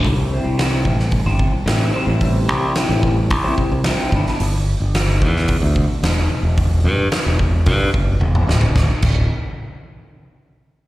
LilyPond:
<<
  \new Staff \with { instrumentName = "Clean electric guitar" } { \time 4/4 \key g \lydian \tempo 4 = 110 <c g c' e' g' c''>8 <c' e' g' c''>16 <c' e' g' c''>16 <c g c' e' g' c''>8 <c' e' g' c''>8. <c' e' g' c''>8. <c g c' e' g' c''>8 <c' e' g' c''>16 <c' e' g' c''>16 | <c g c' e' g' c''>8 <c' e' g' c''>16 <c' e' g' c''>16 <c g c' e' g' c''>8 <c' e' g' c''>8. <c' e' g' c''>8. <c g c' e' g' c''>8 <g, d g b d' e'>16 <g b d' e'>16 | r1 | r1 |
r1 | }
  \new Staff \with { instrumentName = "Fingered electric bass" } { \clef bass \time 4/4 \key g \lydian c,8. c,8. a,,8. g,,8 r16 a,,8 r16 a,,16~ | a,,8 c,8 r16 a,,8. c,8 r16 c,8 r16 g,,16 r16 | g,,8. g,,8. e,8. d,8 r16 e,,8 r16 e,,16~ | e,,8 g,8 r16 e,,8. g,8 fis,,8 e,,8 d,,8 |
d,,16 r16 d,,8 r2. | }
  \new DrumStaff \with { instrumentName = "Drums" } \drummode { \time 4/4 <hho bd>4 <hho sn>8 bd16 sn16 <hho bd>8 bd8 <hho sn>4 | <hho bd>4 <hho sn>8 bd8 <hho bd>8 bd8 <hho sn>8 bd16 sn16 | hho4 <hho sn>8 bd16 sn16 <hho bd>8 bd8 <hho sn>4 | <hho bd>4 <hho sn>8 bd8 <hho bd>8 bd8 tommh16 toml16 sn16 tomfh16 |
<bd sn>8 <cymc bd>8 r4 r4 r4 | }
>>